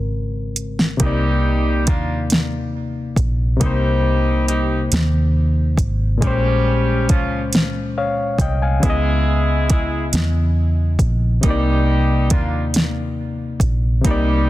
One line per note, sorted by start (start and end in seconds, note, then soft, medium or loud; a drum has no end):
0.00 0.96 G#1 medium
0.00 1.02 C#3 medium
0.00 1.01 G#3 soft
0.00 1.01 C4 medium
0.00 0.52 A#4 medium
0.56 closed hi-hat medium
0.79 snare medium
0.97 1.88 C2 loud
0.97 3.55 C3 medium
0.97 1.83 G3 medium
0.97 3.57 A#3 medium
0.97 1.83 D#4 loud
0.97 1.83 G4 loud
0.97 kick loud
0.97 closed hi-hat medium
1.03 3.58 D#4 medium
1.03 3.60 D5 medium
1.87 3.14 D#2 medium
1.87 2.22 A#3 medium
1.87 2.22 D4 medium
1.87 2.22 F4 medium
1.87 kick loud
1.87 closed hi-hat medium
2.30 snare loud
2.30 closed hi-hat medium
3.16 3.57 A#1 medium
3.16 kick loud
3.16 closed hi-hat medium
3.57 6.16 C3 medium
3.57 6.17 A#3 medium
3.57 4.44 G4 loud
3.61 4.88 C2 loud
3.61 4.44 G3 loud
3.61 4.44 D#4 medium
3.61 6.19 D#4 medium
3.61 kick loud
3.61 closed hi-hat medium
3.66 6.20 C5 medium
4.48 4.82 G3 medium
4.48 4.83 D#4 medium
4.48 4.83 G4 medium
4.48 closed hi-hat medium
4.92 5.75 D#2 medium
4.92 snare loud
4.92 closed hi-hat medium
5.78 6.23 G#1 medium
5.78 kick medium
5.78 closed hi-hat medium
6.17 8.76 A#2 medium
6.17 8.78 G#3 medium
6.22 7.10 A#1 loud
6.22 7.05 G3 loud
6.22 7.05 C#4 loud
6.22 8.80 C#4 medium
6.22 7.05 G4 loud
6.22 kick loud
6.22 closed hi-hat medium
6.27 7.95 C5 medium
7.09 8.36 C#2 medium
7.09 7.43 F3 medium
7.09 7.43 C#4 medium
7.09 7.43 F4 medium
7.09 kick loud
7.09 closed hi-hat medium
7.53 snare loud
7.53 closed hi-hat medium
7.98 8.38 C#5 medium
7.98 8.38 F5 medium
8.38 8.78 C2 medium
8.38 8.61 D#5 medium
8.38 8.61 G5 medium
8.38 kick medium
8.38 closed hi-hat medium
8.62 9.03 F5 medium
8.62 9.03 G#5 medium
8.80 10.09 C#2 loud
8.80 11.38 C#3 medium
8.80 9.66 G#3 loud
8.80 11.40 B3 medium
8.80 9.65 E4 loud
8.80 9.66 G#4 loud
8.80 kick loud
8.80 closed hi-hat medium
8.86 11.41 E4 medium
8.86 11.43 D#5 medium
9.70 10.04 G#3 medium
9.70 10.04 E4 medium
9.70 10.04 G#4 medium
9.70 kick loud
9.70 closed hi-hat medium
10.13 10.96 E2 loud
10.13 snare loud
10.13 closed hi-hat medium
10.99 11.39 A#1 medium
10.99 kick medium
10.99 closed hi-hat medium
11.41 12.32 C2 medium
11.41 13.99 C3 medium
11.41 12.26 G3 loud
11.41 14.01 A#3 medium
11.41 12.26 D#4 loud
11.41 12.26 G4 loud
11.41 kick loud
11.41 closed hi-hat medium
11.47 14.02 D#4 medium
11.47 14.04 D5 medium
12.30 13.57 D#2 medium
12.30 12.65 A#3 medium
12.30 12.65 D4 medium
12.30 12.65 F4 medium
12.30 kick loud
12.30 closed hi-hat medium
12.74 snare loud
12.74 closed hi-hat medium
13.60 14.00 A#1 medium
13.60 kick medium
13.60 closed hi-hat medium
14.01 14.50 C2 loud
14.01 14.50 C3 medium
14.01 14.50 G3 loud
14.01 14.50 A#3 medium
14.01 14.50 D#4 loud
14.01 14.50 G4 loud
14.01 kick loud
14.01 closed hi-hat medium
14.07 14.50 D#4 medium
14.07 14.50 D5 medium